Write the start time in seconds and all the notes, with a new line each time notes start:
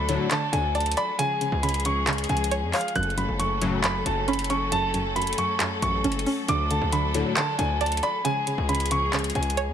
Already playing: D2 F#3 A3 D4 A4 B5
0.09 A2 D3 F#3, closed hi-hat
0.31 D3 A5, clap, closed hi-hat
0.53 D2 D3 G#5, closed hi-hat
0.75 D5 A5, closed hi-hat
0.80 closed hi-hat
0.86 closed hi-hat
0.92 closed hi-hat
0.97 D5 B5, closed hi-hat
1.19 C#3 F3 G#3 C#4 G#4 G#5, closed hi-hat
1.41 C#3, closed hi-hat
1.52 C#2
1.63 C#3 B5, closed hi-hat
1.69 closed hi-hat
1.74 closed hi-hat
1.80 closed hi-hat
1.85 C#3 C#6, closed hi-hat
2.07 C#3, clap, closed hi-hat
2.13 closed hi-hat
2.18 closed hi-hat
2.24 closed hi-hat
2.29 C#2 C#3 G#5, closed hi-hat
2.37 closed hi-hat
2.44 closed hi-hat
2.51 C#5, closed hi-hat
2.62 F2
2.73 C#5 F5, clap, closed hi-hat, open hi-hat
2.81 closed hi-hat
2.88 closed hi-hat
2.95 F#1 F#2 F#3 A3 C#4 A4 F#6, closed hi-hat
3.03 closed hi-hat
3.10 closed hi-hat
3.18 F#2 B5, closed hi-hat
3.29 F#1
3.39 F#2 C#6, closed hi-hat
3.62 F#2 A2 C#3 F#3, closed hi-hat
3.84 F#2 B5, clap, closed hi-hat
4.06 F#1 F#2 A5, closed hi-hat
4.28 C#4 B5, closed hi-hat
4.33 closed hi-hat
4.39 closed hi-hat
4.44 closed hi-hat
4.50 C#4 C#6, closed hi-hat
4.72 F#2 A5, closed hi-hat
4.94 F#2, closed hi-hat
5.16 F#2 B5, closed hi-hat
5.22 closed hi-hat
5.27 closed hi-hat
5.33 closed hi-hat
5.38 F#2 C#6, closed hi-hat
5.60 F#2, clap, closed hi-hat
5.82 A1 F#2 C#6, closed hi-hat
6.04 F#1 C#4, closed hi-hat
6.12 closed hi-hat
6.19 closed hi-hat
6.26 C#4, open hi-hat
6.48 D2 D3 A3 D4 D6, closed hi-hat
6.71 D3 A5, closed hi-hat
6.82 D2
6.92 D3 B5, closed hi-hat
7.14 A2 D3 F#3, closed hi-hat
7.37 D3 A5, clap, closed hi-hat
7.58 D2 D3 G#5, closed hi-hat
7.81 D5 A5, closed hi-hat
7.86 closed hi-hat
7.92 closed hi-hat
7.97 closed hi-hat
8.03 D5 B5, closed hi-hat
8.25 C#3 F3 G#3 C#4 G#4 G#5, closed hi-hat
8.47 C#3, closed hi-hat
8.58 C#2
8.69 C#3 B5, closed hi-hat
8.75 closed hi-hat
8.80 closed hi-hat
8.86 closed hi-hat
8.91 C#3 C#6, closed hi-hat
9.13 C#3, clap, closed hi-hat
9.19 closed hi-hat
9.24 closed hi-hat
9.30 closed hi-hat
9.35 C#2 C#3 G#5, closed hi-hat
9.43 closed hi-hat
9.50 closed hi-hat
9.57 C#5, closed hi-hat
9.68 F2